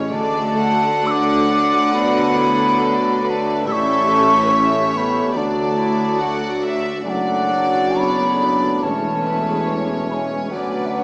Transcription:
Already playing: double bass section A1, tuba A1, cello section A2, harp A2 E3 C#4 A4, bassoon G#3, viola section A3, clarinet C#4, violin section C#5
0.10 double bass section D2, tuba D2, cello section D3, harp D3, french horn section A3, viola section F#4, violin section D5, flute A5
0.58 harp A3, violin section F#5
1.04 bassoon F#3, french horn section D4, clarinet D4, harp F#4, flute E6
1.11 flute D6
1.50 clarinet D4, harp D5
1.92 harp D3, french horn section B3, clarinet F#4, flute B5
2.36 harp A3, clarinet E4
2.79 clarinet D4, harp F#4, violin section A4
3.22 french horn section A3, clarinet D4, violin section B4, harp D5, flute B5
3.30 flute A5
3.64 tuba A1, double bass section A1, cello section A2, harp A2, timpani A2, bassoon G3, viola section A3 G4, french horn section C#4, clarinet E4, violin section A4 E5, flute E6
3.72 flute C#6
4.08 harp E3, bassoon A3
4.49 clarinet C#4, harp E4, violin section C#5
4.93 french horn section B3, harp A4, flute C#6
4.97 flute B5
5.34 cello section D2, tuba D2, double bass section D2, harp D3, bassoon F#3, french horn section A3, clarinet D4, viola section F#4, violin section D5, flute A5
5.78 harp A3, clarinet E4
6.18 bassoon F#3, clarinet F#4, harp F#4, violin section F#5
6.63 harp D5, violin section E5
7.04 double bass section F#1, tuba F#1, cello section F#2, harp F#2, french horn section F#3, bassoon F#3, viola section F#3 A3, clarinet D4, violin section D5, flute G#5
7.10 flute F#5
7.28 viola section A3
7.50 harp F#3, viola section D4
7.74 viola section F#4
7.96 french horn section B3, harp D4, viola section D4, violin section C#5, flute B5
8.21 viola section A3
8.42 viola section F#3, harp A4, violin section D5
8.65 viola section A3
8.83 double bass section E1, tuba E1, timpani E2, cello section E2, harp E3, bassoon E3, viola section G#3, french horn section A3, clarinet C#4, violin section C#5, flute A5
9.06 viola section C#4
9.25 harp G#3, viola section E4, violin section B4
9.46 viola section G#4
9.67 viola section G#3 E4, harp C#5, violin section C#5
9.88 viola section C#4
10.09 french horn section G#3, viola section G#3, violin section C#5, harp E5, flute B5
10.14 flute G#5
10.30 viola section C#4
10.51 tuba D2, cello section D2, double bass section D2, harp D3, viola section F#3 B3, bassoon F#3, french horn section F#3, violin section B4 D5, flute F#5
10.69 flute F#5 G#5
10.74 viola section B3
10.86 flute E5 F#5
10.98 harp D4, viola section D4, violin section C#5

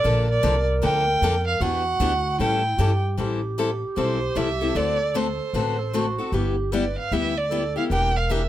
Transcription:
Already playing: violin D5
0.03 upright bass A#1, steel-string acoustic guitar D3 F3 A#3 D4 A4, clarinet A#4
0.30 violin D5
0.43 upright bass C2, steel-string acoustic guitar D3 F3 A#3 D4 A4
0.82 upright bass D2, steel-string acoustic guitar D3 F3 A#3 D4 A4, violin G5
1.22 upright bass F2, steel-string acoustic guitar D3 F3 A#3 D4 A4
1.48 violin F5
1.61 upright bass E2, steel-string acoustic guitar E3 B3 D4 G4, clarinet F#4, violin F#5
2.00 upright bass D2, steel-string acoustic guitar E3 B3 D4 G4
2.39 upright bass A2, steel-string acoustic guitar E3 G3 C#4 E4 A4, clarinet E4, violin G5
2.78 upright bass G2, steel-string acoustic guitar E3 G3 C#4 E4 A4, clarinet G4
3.17 upright bass A1, steel-string acoustic guitar E3 G3 C4 E4 A4, clarinet G4
3.58 steel-string acoustic guitar E3 G3 C4 E4 A4
3.96 upright bass B1, steel-string acoustic guitar E3 G3 C4 E4 A4, violin C5
4.35 upright bass C2, steel-string acoustic guitar E3 G3 C4 E4 A4, violin E5
4.61 steel-string acoustic guitar C4 E4 A4
4.75 upright bass D2, steel-string acoustic guitar D3 A3 C4 F#4 A4, clarinet A4, violin D5
5.14 steel-string acoustic guitar D3 A3 C4 F#4 A4, violin C5
5.53 upright bass A1, steel-string acoustic guitar D3 A3 C4 F#4 A4, clarinet B4
5.79 clarinet A4
5.93 steel-string acoustic guitar D3 A3 C4 F#4 A4, clarinet F#4
6.18 steel-string acoustic guitar C4 F#4 A4
6.32 upright bass G1, steel-string acoustic guitar G3 B3 E4 G4, clarinet G4
6.72 steel-string acoustic guitar G3 B3 E4 G4, clarinet B4, violin D5
6.99 violin F5
7.12 upright bass D2, steel-string acoustic guitar G3 B3 E4 G4, violin E5
7.38 violin D5
7.50 steel-string acoustic guitar G3 B3 E4 G4, clarinet A4
7.76 steel-string acoustic guitar B3 E4 G4, violin F5
7.89 upright bass E1, steel-string acoustic guitar E3 A#3 D4 G4, clarinet A#4, violin G5
8.16 violin F5
8.29 steel-string acoustic guitar E3 A#3 D4 G4, violin E5

